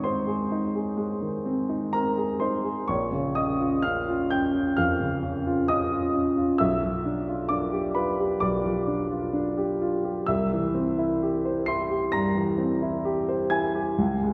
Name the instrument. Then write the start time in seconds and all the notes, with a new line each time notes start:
grand piano
Already playing: G#2 D#3 C4 D#4 C#5 D#5 C#6 D#6
0.04 C4 C5 C6
0.27 G#4
0.52 D#4
0.75 G#4
0.97 G#3
1.21 D#3
1.45 C4
1.69 D#4
1.93 C4 A#4 A#5
2.17 G#4
2.40 D#4 C5 C6
2.64 G#4
2.88 A#1 C#5 C#6
3.12 C#3
3.35 C#4 D#5 D#6
3.59 F4
3.82 C#4 F5 F6
4.08 F4
4.30 C#4 G5 G6
4.55 F4
4.77 F2 F5 F6
5.00 C#3
5.23 C#4
5.47 F4
5.68 C#4 D#5 D#6
5.92 F4
6.14 C#4
6.38 F4
6.58 B1 E5 E6
6.82 F3
7.05 D4
7.28 F4
7.49 D4 D5 D6
7.72 G4
7.95 F4 B4 B5
8.19 G4
8.40 B1 D5 D6
8.64 F3
8.87 D4
9.10 F4
9.33 D4
9.58 G4
9.82 F4
10.05 G4
10.26 C2 E5 E6
10.52 E3
10.74 C4
10.99 E4
11.23 G4
11.45 C5
11.66 E4 C6 C7
11.90 G4
12.12 G2 A#5 A#6
12.35 E3
12.58 C4
12.82 E4
13.05 G4
13.29 C5
13.50 E4 G#5 G#6
13.75 G4
13.98 C#2
14.23 G#3